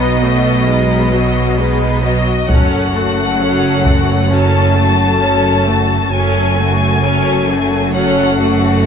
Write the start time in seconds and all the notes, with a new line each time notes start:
Already playing: B1 B2 F#3 B3 D#4 B4 D#5
0.21 A3 F#4 D#5
0.67 G#3 D#4 B4
1.12 F#3 F#4 D#5
1.58 G#3 D#4 B4 D#5
2.02 F#3 F#4 D#5
2.47 F#1 F#2 F#3 A3 C#4 A4 C#5 F#5, taiko
2.93 A3 F#4 A4
3.38 F#3 C#4 A4 C#5
3.83 A3 F#4 A4, taiko
4.29 F#3 C#4 A4 C#5 A5
4.75 A3 F#4 A4
5.20 F#3 C#4 A4 C#5
5.65 A3 F#4 A4
6.12 F#1 F#2 F#3 A3 C#4 A4 C#5 G#5
6.57 A3 F#4 A4
7.03 F#3 C#4 A4 C#5
7.48 A3 F#4 A4
7.93 F#3 C#4 A4 C#5 F#5
8.40 A3 F#4 A4